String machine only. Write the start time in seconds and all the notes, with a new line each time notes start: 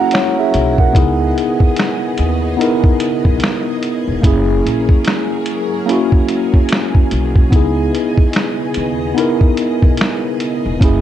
Already playing: F#3 C#4 E4 A#4
0.95 C#3 B3 G#4 D#5
4.24 F#3 C#4 A#4
7.52 C#3 B3 D#5
10.81 F#3 C#4 A#4